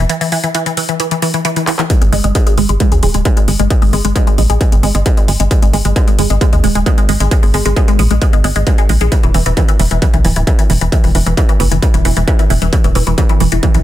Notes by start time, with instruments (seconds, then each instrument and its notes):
0.09 synth arpeggio sound E3, closed hi-hat
0.21 synth arpeggio sound E3, open hi-hat
0.32 synth arpeggio sound E3, open hi-hat
0.44 synth arpeggio sound E3, closed hi-hat
0.55 synth arpeggio sound E3, closed hi-hat
0.66 synth arpeggio sound E3, closed hi-hat
0.77 synth arpeggio sound E3, open hi-hat
0.89 synth arpeggio sound E3, closed hi-hat
1.00 synth arpeggio sound E3, closed hi-hat
1.11 synth arpeggio sound E3, closed hi-hat
1.22 synth arpeggio sound E3, open hi-hat
1.34 synth arpeggio sound E3, closed hi-hat
1.45 synth arpeggio sound E3, closed hi-hat
1.56 synth arpeggio sound E3, closed hi-hat
1.67 synth arpeggio sound E3, clap, open hi-hat
1.79 synth arpeggio sound E3, clap, closed hi-hat
1.90 synth arpeggio sound G#3, kick, closed hi-hat
2.02 analog synth bass G#1, synth arpeggio sound G#3, closed hi-hat
2.12 analog synth bass G#1, synth arpeggio sound G#3, open hi-hat
2.24 analog synth bass G#1, synth arpeggio sound G#3, closed hi-hat
2.35 synth arpeggio sound G#3, kick, closed hi-hat
2.47 synth arpeggio sound G#3, closed hi-hat
2.58 analog synth bass G#1, synth arpeggio sound G#3, open hi-hat
2.69 analog synth bass G#1, synth arpeggio sound G#3, closed hi-hat
2.80 synth arpeggio sound G#3, kick, closed hi-hat
2.92 analog synth bass D#2, synth arpeggio sound G#3, closed hi-hat
3.03 analog synth bass D#1, synth arpeggio sound G#3, open hi-hat
3.14 analog synth bass D#1, synth arpeggio sound G#3, closed hi-hat
3.25 synth arpeggio sound G#3, kick, closed hi-hat
3.37 synth arpeggio sound G#3, closed hi-hat
3.48 analog synth bass G#1, synth arpeggio sound G#3, open hi-hat
3.59 analog synth bass G#1, synth arpeggio sound G#3, closed hi-hat
3.70 synth arpeggio sound G#3, kick, closed hi-hat
3.82 analog synth bass G#1, synth arpeggio sound G#3, open hi-hat
3.93 analog synth bass G#1, synth arpeggio sound G#3, open hi-hat
4.05 analog synth bass G#1, synth arpeggio sound G#3, closed hi-hat
4.16 synth arpeggio sound G#3, kick, closed hi-hat
4.27 synth arpeggio sound G#3, closed hi-hat
4.38 analog synth bass A#1, synth arpeggio sound G#3, open hi-hat
4.50 analog synth bass A#1, synth arpeggio sound G#3, closed hi-hat
4.61 synth arpeggio sound G#3, kick, closed hi-hat
4.72 analog synth bass G#1, synth arpeggio sound G#3, closed hi-hat
4.83 analog synth bass G#1, synth arpeggio sound G#3, open hi-hat
4.95 analog synth bass G#1, synth arpeggio sound G#3, closed hi-hat
5.06 synth arpeggio sound G#3, kick, closed hi-hat
5.17 synth arpeggio sound G#3, closed hi-hat
5.28 analog synth bass G#1, synth arpeggio sound G#3, open hi-hat
5.40 analog synth bass G#1, synth arpeggio sound G#3, closed hi-hat
5.51 synth arpeggio sound G#3, kick, closed hi-hat
5.62 analog synth bass G#1, synth arpeggio sound G#3, closed hi-hat
5.73 analog synth bass G#1, synth arpeggio sound G#3, open hi-hat
5.85 analog synth bass G#1, synth arpeggio sound G#3, closed hi-hat
5.96 synth arpeggio sound G#3, kick, closed hi-hat
6.08 synth arpeggio sound G#3, closed hi-hat
6.19 analog synth bass G#1, synth arpeggio sound G#3, open hi-hat
6.30 analog synth bass G#1, synth arpeggio sound G#3, closed hi-hat
6.41 synth arpeggio sound G#3, kick, closed hi-hat
6.53 analog synth bass D#2, synth arpeggio sound G#3, closed hi-hat
6.64 analog synth bass D#1, synth arpeggio sound G#3, open hi-hat
6.75 analog synth bass D#1, synth arpeggio sound G#3, closed hi-hat
6.86 synth arpeggio sound G#3, kick, closed hi-hat
6.98 synth arpeggio sound G#3, closed hi-hat
7.09 analog synth bass G#1, synth arpeggio sound G#3, open hi-hat
7.20 analog synth bass G#1, synth arpeggio sound G#3, closed hi-hat
7.31 synth arpeggio sound G#3, kick, closed hi-hat
7.43 analog synth bass G#1, synth arpeggio sound G#3, open hi-hat
7.54 analog synth bass G#1, synth arpeggio sound G#3, open hi-hat
7.65 analog synth bass G#1, synth arpeggio sound G#3, closed hi-hat
7.76 synth arpeggio sound G#3, kick, closed hi-hat
7.88 synth arpeggio sound G#3, closed hi-hat
7.99 analog synth bass A#1, synth arpeggio sound G#3, open hi-hat
8.11 analog synth bass A#1, synth arpeggio sound G#3, closed hi-hat
8.22 synth arpeggio sound G#3, kick, closed hi-hat
8.33 analog synth bass G#1, synth arpeggio sound G#3, closed hi-hat
8.44 analog synth bass G#1, synth arpeggio sound G#3, open hi-hat
8.56 analog synth bass G#1, synth arpeggio sound G#3, closed hi-hat
8.67 synth arpeggio sound G#3, kick, closed hi-hat
8.78 synth arpeggio sound G#3, closed hi-hat
8.89 analog synth bass A#1, synth arpeggio sound G#3, open hi-hat
9.01 analog synth bass A#1, synth arpeggio sound G#3, closed hi-hat
9.12 synth arpeggio sound E3, kick, closed hi-hat
9.23 analog synth bass E1, synth arpeggio sound E3, closed hi-hat
9.34 analog synth bass E1, synth arpeggio sound E3, open hi-hat
9.46 analog synth bass E1, synth arpeggio sound E3, closed hi-hat
9.57 synth arpeggio sound E3, kick, closed hi-hat
9.68 synth arpeggio sound E3, closed hi-hat
9.79 analog synth bass E1, synth arpeggio sound E3, open hi-hat
9.91 analog synth bass E1, synth arpeggio sound E3, closed hi-hat
10.02 synth arpeggio sound E3, kick, closed hi-hat
10.14 analog synth bass B1, synth arpeggio sound E3, closed hi-hat
10.25 analog synth bass D1, synth arpeggio sound E3, open hi-hat
10.36 analog synth bass D1, synth arpeggio sound E3, closed hi-hat
10.47 synth arpeggio sound E3, kick, closed hi-hat
10.59 synth arpeggio sound E3, closed hi-hat
10.70 analog synth bass E1, synth arpeggio sound E3, open hi-hat
10.81 analog synth bass E1, synth arpeggio sound E3, closed hi-hat
10.92 synth arpeggio sound E3, kick, closed hi-hat
11.04 analog synth bass E1, synth arpeggio sound E3, open hi-hat
11.15 analog synth bass E1, synth arpeggio sound E3, open hi-hat
11.26 analog synth bass E1, synth arpeggio sound E3, closed hi-hat
11.37 synth arpeggio sound E3, kick, closed hi-hat
11.49 synth arpeggio sound E3, closed hi-hat
11.60 analog synth bass F#1, synth arpeggio sound E3, open hi-hat
11.71 analog synth bass F#1, synth arpeggio sound E3, closed hi-hat
11.82 synth arpeggio sound E3, kick, closed hi-hat
11.94 analog synth bass E1, synth arpeggio sound E3, closed hi-hat
12.05 analog synth bass E1, synth arpeggio sound E3, open hi-hat
12.17 analog synth bass E1, synth arpeggio sound E3, closed hi-hat
12.28 synth arpeggio sound E3, kick, closed hi-hat
12.39 synth arpeggio sound E3, closed hi-hat
12.50 analog synth bass E1, synth arpeggio sound E3, open hi-hat
12.62 analog synth bass E1, synth arpeggio sound E3, closed hi-hat
12.73 synth arpeggio sound E3, kick, closed hi-hat
12.84 analog synth bass E1, synth arpeggio sound E3, closed hi-hat
12.95 analog synth bass E1, synth arpeggio sound E3, open hi-hat
13.07 analog synth bass E1, synth arpeggio sound E3, closed hi-hat
13.18 synth arpeggio sound E3, kick, closed hi-hat
13.29 synth arpeggio sound E3, closed hi-hat
13.40 analog synth bass E1, synth arpeggio sound E3, open hi-hat
13.52 analog synth bass E1, synth arpeggio sound E3, closed hi-hat
13.63 synth arpeggio sound E3, kick, closed hi-hat
13.74 analog synth bass B1, synth arpeggio sound E3, closed hi-hat